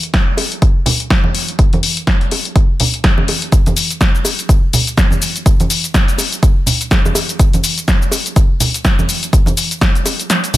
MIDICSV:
0, 0, Header, 1, 2, 480
1, 0, Start_track
1, 0, Tempo, 483871
1, 1576, Time_signature, 4, 2, 24, 8
1, 10486, End_track
2, 0, Start_track
2, 0, Title_t, "Drums"
2, 33, Note_on_c, 9, 42, 51
2, 132, Note_off_c, 9, 42, 0
2, 135, Note_on_c, 9, 42, 65
2, 136, Note_on_c, 9, 36, 123
2, 136, Note_on_c, 9, 38, 119
2, 235, Note_off_c, 9, 36, 0
2, 235, Note_off_c, 9, 42, 0
2, 236, Note_off_c, 9, 38, 0
2, 371, Note_on_c, 9, 60, 63
2, 375, Note_on_c, 9, 46, 93
2, 470, Note_off_c, 9, 60, 0
2, 474, Note_off_c, 9, 46, 0
2, 513, Note_on_c, 9, 42, 50
2, 613, Note_off_c, 9, 42, 0
2, 615, Note_on_c, 9, 42, 63
2, 616, Note_on_c, 9, 36, 120
2, 714, Note_off_c, 9, 42, 0
2, 715, Note_off_c, 9, 36, 0
2, 851, Note_on_c, 9, 64, 82
2, 855, Note_on_c, 9, 46, 106
2, 950, Note_off_c, 9, 64, 0
2, 954, Note_off_c, 9, 46, 0
2, 993, Note_on_c, 9, 42, 51
2, 1093, Note_off_c, 9, 42, 0
2, 1095, Note_on_c, 9, 36, 120
2, 1095, Note_on_c, 9, 42, 62
2, 1096, Note_on_c, 9, 38, 115
2, 1194, Note_off_c, 9, 42, 0
2, 1195, Note_off_c, 9, 36, 0
2, 1196, Note_off_c, 9, 38, 0
2, 1228, Note_on_c, 9, 63, 80
2, 1327, Note_off_c, 9, 63, 0
2, 1335, Note_on_c, 9, 46, 95
2, 1434, Note_off_c, 9, 46, 0
2, 1473, Note_on_c, 9, 42, 51
2, 1572, Note_off_c, 9, 42, 0
2, 1575, Note_on_c, 9, 36, 112
2, 1575, Note_on_c, 9, 42, 63
2, 1674, Note_off_c, 9, 42, 0
2, 1675, Note_off_c, 9, 36, 0
2, 1714, Note_on_c, 9, 42, 34
2, 1721, Note_on_c, 9, 63, 88
2, 1813, Note_off_c, 9, 42, 0
2, 1815, Note_on_c, 9, 46, 103
2, 1820, Note_off_c, 9, 63, 0
2, 1914, Note_off_c, 9, 46, 0
2, 1954, Note_on_c, 9, 42, 49
2, 2053, Note_off_c, 9, 42, 0
2, 2055, Note_on_c, 9, 36, 122
2, 2055, Note_on_c, 9, 42, 61
2, 2056, Note_on_c, 9, 38, 118
2, 2154, Note_off_c, 9, 42, 0
2, 2155, Note_off_c, 9, 36, 0
2, 2156, Note_off_c, 9, 38, 0
2, 2194, Note_on_c, 9, 42, 32
2, 2293, Note_off_c, 9, 42, 0
2, 2296, Note_on_c, 9, 46, 90
2, 2299, Note_on_c, 9, 60, 55
2, 2395, Note_off_c, 9, 46, 0
2, 2399, Note_off_c, 9, 60, 0
2, 2434, Note_on_c, 9, 42, 50
2, 2533, Note_off_c, 9, 42, 0
2, 2535, Note_on_c, 9, 36, 115
2, 2535, Note_on_c, 9, 42, 61
2, 2635, Note_off_c, 9, 36, 0
2, 2635, Note_off_c, 9, 42, 0
2, 2775, Note_on_c, 9, 46, 107
2, 2780, Note_on_c, 9, 64, 73
2, 2874, Note_off_c, 9, 46, 0
2, 2879, Note_off_c, 9, 64, 0
2, 2914, Note_on_c, 9, 42, 48
2, 3013, Note_off_c, 9, 42, 0
2, 3014, Note_on_c, 9, 60, 66
2, 3015, Note_on_c, 9, 36, 115
2, 3015, Note_on_c, 9, 42, 61
2, 3016, Note_on_c, 9, 38, 113
2, 3113, Note_off_c, 9, 60, 0
2, 3114, Note_off_c, 9, 42, 0
2, 3115, Note_off_c, 9, 36, 0
2, 3115, Note_off_c, 9, 38, 0
2, 3152, Note_on_c, 9, 60, 60
2, 3153, Note_on_c, 9, 63, 79
2, 3251, Note_off_c, 9, 60, 0
2, 3252, Note_off_c, 9, 63, 0
2, 3255, Note_on_c, 9, 46, 92
2, 3259, Note_on_c, 9, 60, 62
2, 3354, Note_off_c, 9, 46, 0
2, 3358, Note_off_c, 9, 60, 0
2, 3393, Note_on_c, 9, 42, 49
2, 3492, Note_off_c, 9, 42, 0
2, 3495, Note_on_c, 9, 36, 108
2, 3495, Note_on_c, 9, 42, 62
2, 3500, Note_on_c, 9, 82, 45
2, 3594, Note_off_c, 9, 42, 0
2, 3595, Note_off_c, 9, 36, 0
2, 3599, Note_off_c, 9, 82, 0
2, 3633, Note_on_c, 9, 42, 34
2, 3638, Note_on_c, 9, 63, 91
2, 3638, Note_on_c, 9, 82, 30
2, 3732, Note_off_c, 9, 42, 0
2, 3735, Note_on_c, 9, 46, 101
2, 3737, Note_off_c, 9, 63, 0
2, 3737, Note_off_c, 9, 82, 0
2, 3740, Note_on_c, 9, 82, 75
2, 3834, Note_off_c, 9, 46, 0
2, 3839, Note_off_c, 9, 82, 0
2, 3874, Note_on_c, 9, 42, 48
2, 3878, Note_on_c, 9, 82, 33
2, 3973, Note_off_c, 9, 42, 0
2, 3975, Note_on_c, 9, 36, 115
2, 3976, Note_on_c, 9, 42, 63
2, 3977, Note_on_c, 9, 38, 108
2, 3978, Note_off_c, 9, 82, 0
2, 3980, Note_on_c, 9, 82, 44
2, 4074, Note_off_c, 9, 36, 0
2, 4075, Note_off_c, 9, 42, 0
2, 4076, Note_off_c, 9, 38, 0
2, 4080, Note_off_c, 9, 82, 0
2, 4119, Note_on_c, 9, 82, 30
2, 4213, Note_on_c, 9, 60, 55
2, 4216, Note_on_c, 9, 46, 88
2, 4218, Note_off_c, 9, 82, 0
2, 4221, Note_on_c, 9, 82, 75
2, 4312, Note_off_c, 9, 60, 0
2, 4315, Note_off_c, 9, 46, 0
2, 4320, Note_off_c, 9, 82, 0
2, 4354, Note_on_c, 9, 42, 50
2, 4359, Note_on_c, 9, 82, 33
2, 4453, Note_off_c, 9, 42, 0
2, 4455, Note_on_c, 9, 36, 114
2, 4456, Note_on_c, 9, 42, 62
2, 4458, Note_off_c, 9, 82, 0
2, 4461, Note_on_c, 9, 82, 44
2, 4554, Note_off_c, 9, 36, 0
2, 4555, Note_off_c, 9, 42, 0
2, 4560, Note_off_c, 9, 82, 0
2, 4696, Note_on_c, 9, 46, 105
2, 4697, Note_on_c, 9, 64, 79
2, 4700, Note_on_c, 9, 82, 75
2, 4795, Note_off_c, 9, 46, 0
2, 4796, Note_off_c, 9, 64, 0
2, 4800, Note_off_c, 9, 82, 0
2, 4834, Note_on_c, 9, 42, 50
2, 4839, Note_on_c, 9, 82, 33
2, 4933, Note_off_c, 9, 42, 0
2, 4935, Note_on_c, 9, 36, 112
2, 4936, Note_on_c, 9, 42, 62
2, 4937, Note_on_c, 9, 38, 109
2, 4938, Note_off_c, 9, 82, 0
2, 4941, Note_on_c, 9, 82, 44
2, 5034, Note_off_c, 9, 36, 0
2, 5035, Note_off_c, 9, 42, 0
2, 5036, Note_off_c, 9, 38, 0
2, 5040, Note_off_c, 9, 82, 0
2, 5066, Note_on_c, 9, 63, 82
2, 5079, Note_on_c, 9, 82, 30
2, 5165, Note_off_c, 9, 63, 0
2, 5175, Note_on_c, 9, 46, 90
2, 5178, Note_off_c, 9, 82, 0
2, 5180, Note_on_c, 9, 82, 76
2, 5275, Note_off_c, 9, 46, 0
2, 5280, Note_off_c, 9, 82, 0
2, 5314, Note_on_c, 9, 42, 51
2, 5318, Note_on_c, 9, 82, 34
2, 5413, Note_off_c, 9, 42, 0
2, 5415, Note_on_c, 9, 36, 110
2, 5416, Note_on_c, 9, 42, 66
2, 5418, Note_off_c, 9, 82, 0
2, 5420, Note_on_c, 9, 82, 45
2, 5515, Note_off_c, 9, 36, 0
2, 5515, Note_off_c, 9, 42, 0
2, 5520, Note_off_c, 9, 82, 0
2, 5554, Note_on_c, 9, 42, 35
2, 5558, Note_on_c, 9, 82, 31
2, 5559, Note_on_c, 9, 63, 80
2, 5653, Note_off_c, 9, 42, 0
2, 5655, Note_on_c, 9, 46, 98
2, 5658, Note_off_c, 9, 63, 0
2, 5658, Note_off_c, 9, 82, 0
2, 5660, Note_on_c, 9, 82, 80
2, 5755, Note_off_c, 9, 46, 0
2, 5759, Note_off_c, 9, 82, 0
2, 5794, Note_on_c, 9, 42, 52
2, 5799, Note_on_c, 9, 82, 34
2, 5894, Note_off_c, 9, 42, 0
2, 5895, Note_on_c, 9, 36, 110
2, 5896, Note_on_c, 9, 42, 64
2, 5897, Note_on_c, 9, 38, 112
2, 5898, Note_off_c, 9, 82, 0
2, 5901, Note_on_c, 9, 82, 46
2, 5995, Note_off_c, 9, 36, 0
2, 5995, Note_off_c, 9, 42, 0
2, 5996, Note_off_c, 9, 38, 0
2, 6000, Note_off_c, 9, 82, 0
2, 6034, Note_on_c, 9, 42, 35
2, 6039, Note_on_c, 9, 82, 31
2, 6132, Note_on_c, 9, 60, 59
2, 6133, Note_off_c, 9, 42, 0
2, 6136, Note_on_c, 9, 46, 86
2, 6138, Note_off_c, 9, 82, 0
2, 6141, Note_on_c, 9, 82, 80
2, 6231, Note_off_c, 9, 60, 0
2, 6235, Note_off_c, 9, 46, 0
2, 6240, Note_off_c, 9, 82, 0
2, 6275, Note_on_c, 9, 42, 53
2, 6279, Note_on_c, 9, 82, 35
2, 6374, Note_off_c, 9, 42, 0
2, 6376, Note_on_c, 9, 36, 111
2, 6376, Note_on_c, 9, 42, 65
2, 6379, Note_off_c, 9, 82, 0
2, 6381, Note_on_c, 9, 82, 46
2, 6475, Note_off_c, 9, 36, 0
2, 6475, Note_off_c, 9, 42, 0
2, 6480, Note_off_c, 9, 82, 0
2, 6611, Note_on_c, 9, 64, 69
2, 6616, Note_on_c, 9, 46, 100
2, 6621, Note_on_c, 9, 82, 77
2, 6710, Note_off_c, 9, 64, 0
2, 6715, Note_off_c, 9, 46, 0
2, 6720, Note_off_c, 9, 82, 0
2, 6754, Note_on_c, 9, 42, 52
2, 6759, Note_on_c, 9, 82, 35
2, 6853, Note_off_c, 9, 42, 0
2, 6856, Note_on_c, 9, 36, 111
2, 6856, Note_on_c, 9, 42, 65
2, 6857, Note_on_c, 9, 38, 113
2, 6858, Note_off_c, 9, 82, 0
2, 6859, Note_on_c, 9, 60, 66
2, 6860, Note_on_c, 9, 82, 46
2, 6955, Note_off_c, 9, 36, 0
2, 6955, Note_off_c, 9, 42, 0
2, 6956, Note_off_c, 9, 38, 0
2, 6958, Note_off_c, 9, 60, 0
2, 6960, Note_off_c, 9, 82, 0
2, 6998, Note_on_c, 9, 63, 73
2, 6999, Note_on_c, 9, 82, 32
2, 7000, Note_on_c, 9, 60, 62
2, 7093, Note_off_c, 9, 60, 0
2, 7093, Note_on_c, 9, 60, 59
2, 7096, Note_on_c, 9, 46, 88
2, 7097, Note_off_c, 9, 63, 0
2, 7098, Note_off_c, 9, 82, 0
2, 7100, Note_on_c, 9, 82, 83
2, 7192, Note_off_c, 9, 60, 0
2, 7195, Note_off_c, 9, 46, 0
2, 7200, Note_off_c, 9, 82, 0
2, 7234, Note_on_c, 9, 42, 53
2, 7239, Note_on_c, 9, 82, 35
2, 7333, Note_off_c, 9, 42, 0
2, 7335, Note_on_c, 9, 42, 68
2, 7336, Note_on_c, 9, 36, 107
2, 7338, Note_off_c, 9, 82, 0
2, 7340, Note_on_c, 9, 82, 47
2, 7435, Note_off_c, 9, 36, 0
2, 7435, Note_off_c, 9, 42, 0
2, 7439, Note_off_c, 9, 82, 0
2, 7474, Note_on_c, 9, 42, 37
2, 7479, Note_on_c, 9, 82, 32
2, 7481, Note_on_c, 9, 63, 79
2, 7573, Note_off_c, 9, 42, 0
2, 7575, Note_on_c, 9, 46, 98
2, 7578, Note_off_c, 9, 82, 0
2, 7580, Note_off_c, 9, 63, 0
2, 7580, Note_on_c, 9, 82, 82
2, 7675, Note_off_c, 9, 46, 0
2, 7679, Note_off_c, 9, 82, 0
2, 7714, Note_on_c, 9, 42, 54
2, 7719, Note_on_c, 9, 82, 36
2, 7813, Note_off_c, 9, 42, 0
2, 7816, Note_on_c, 9, 36, 114
2, 7816, Note_on_c, 9, 42, 66
2, 7817, Note_on_c, 9, 38, 116
2, 7818, Note_off_c, 9, 82, 0
2, 7821, Note_on_c, 9, 82, 46
2, 7915, Note_off_c, 9, 36, 0
2, 7915, Note_off_c, 9, 42, 0
2, 7916, Note_off_c, 9, 38, 0
2, 7920, Note_off_c, 9, 82, 0
2, 7958, Note_on_c, 9, 82, 32
2, 8050, Note_on_c, 9, 60, 70
2, 8055, Note_on_c, 9, 46, 83
2, 8058, Note_off_c, 9, 82, 0
2, 8060, Note_on_c, 9, 82, 82
2, 8149, Note_off_c, 9, 60, 0
2, 8154, Note_off_c, 9, 46, 0
2, 8159, Note_off_c, 9, 82, 0
2, 8193, Note_on_c, 9, 42, 54
2, 8198, Note_on_c, 9, 82, 36
2, 8293, Note_off_c, 9, 42, 0
2, 8295, Note_on_c, 9, 42, 67
2, 8296, Note_on_c, 9, 36, 111
2, 8297, Note_off_c, 9, 82, 0
2, 8300, Note_on_c, 9, 82, 47
2, 8394, Note_off_c, 9, 42, 0
2, 8395, Note_off_c, 9, 36, 0
2, 8399, Note_off_c, 9, 82, 0
2, 8534, Note_on_c, 9, 64, 67
2, 8535, Note_on_c, 9, 46, 98
2, 8540, Note_on_c, 9, 82, 81
2, 8634, Note_off_c, 9, 46, 0
2, 8634, Note_off_c, 9, 64, 0
2, 8639, Note_off_c, 9, 82, 0
2, 8674, Note_on_c, 9, 42, 54
2, 8679, Note_on_c, 9, 82, 35
2, 8773, Note_off_c, 9, 42, 0
2, 8775, Note_on_c, 9, 42, 67
2, 8776, Note_on_c, 9, 36, 110
2, 8777, Note_on_c, 9, 38, 113
2, 8778, Note_off_c, 9, 82, 0
2, 8780, Note_on_c, 9, 82, 46
2, 8875, Note_off_c, 9, 36, 0
2, 8875, Note_off_c, 9, 42, 0
2, 8876, Note_off_c, 9, 38, 0
2, 8879, Note_off_c, 9, 82, 0
2, 8917, Note_on_c, 9, 63, 80
2, 8919, Note_on_c, 9, 82, 32
2, 9015, Note_on_c, 9, 46, 87
2, 9017, Note_off_c, 9, 63, 0
2, 9018, Note_off_c, 9, 82, 0
2, 9020, Note_on_c, 9, 82, 81
2, 9114, Note_off_c, 9, 46, 0
2, 9119, Note_off_c, 9, 82, 0
2, 9154, Note_on_c, 9, 42, 54
2, 9159, Note_on_c, 9, 82, 36
2, 9253, Note_off_c, 9, 42, 0
2, 9255, Note_on_c, 9, 36, 107
2, 9256, Note_on_c, 9, 42, 68
2, 9258, Note_off_c, 9, 82, 0
2, 9260, Note_on_c, 9, 82, 47
2, 9355, Note_off_c, 9, 36, 0
2, 9355, Note_off_c, 9, 42, 0
2, 9360, Note_off_c, 9, 82, 0
2, 9386, Note_on_c, 9, 63, 93
2, 9394, Note_on_c, 9, 42, 38
2, 9399, Note_on_c, 9, 82, 32
2, 9485, Note_off_c, 9, 63, 0
2, 9493, Note_off_c, 9, 42, 0
2, 9496, Note_on_c, 9, 46, 99
2, 9498, Note_off_c, 9, 82, 0
2, 9501, Note_on_c, 9, 82, 79
2, 9595, Note_off_c, 9, 46, 0
2, 9600, Note_off_c, 9, 82, 0
2, 9634, Note_on_c, 9, 42, 56
2, 9639, Note_on_c, 9, 82, 35
2, 9733, Note_off_c, 9, 42, 0
2, 9735, Note_on_c, 9, 36, 113
2, 9736, Note_on_c, 9, 42, 70
2, 9737, Note_on_c, 9, 38, 118
2, 9738, Note_off_c, 9, 82, 0
2, 9741, Note_on_c, 9, 82, 47
2, 9834, Note_off_c, 9, 36, 0
2, 9835, Note_off_c, 9, 42, 0
2, 9836, Note_off_c, 9, 38, 0
2, 9840, Note_off_c, 9, 82, 0
2, 9874, Note_on_c, 9, 42, 37
2, 9879, Note_on_c, 9, 82, 32
2, 9973, Note_off_c, 9, 42, 0
2, 9975, Note_on_c, 9, 60, 67
2, 9976, Note_on_c, 9, 46, 88
2, 9978, Note_off_c, 9, 82, 0
2, 9981, Note_on_c, 9, 82, 79
2, 10074, Note_off_c, 9, 60, 0
2, 10075, Note_off_c, 9, 46, 0
2, 10080, Note_off_c, 9, 82, 0
2, 10114, Note_on_c, 9, 42, 57
2, 10119, Note_on_c, 9, 82, 36
2, 10213, Note_off_c, 9, 42, 0
2, 10216, Note_on_c, 9, 42, 68
2, 10217, Note_on_c, 9, 38, 63
2, 10218, Note_off_c, 9, 82, 0
2, 10220, Note_on_c, 9, 82, 46
2, 10315, Note_off_c, 9, 42, 0
2, 10316, Note_off_c, 9, 38, 0
2, 10319, Note_off_c, 9, 82, 0
2, 10354, Note_on_c, 9, 42, 38
2, 10359, Note_on_c, 9, 82, 31
2, 10452, Note_on_c, 9, 64, 77
2, 10453, Note_off_c, 9, 42, 0
2, 10455, Note_on_c, 9, 46, 101
2, 10458, Note_off_c, 9, 82, 0
2, 10486, Note_off_c, 9, 46, 0
2, 10486, Note_off_c, 9, 64, 0
2, 10486, End_track
0, 0, End_of_file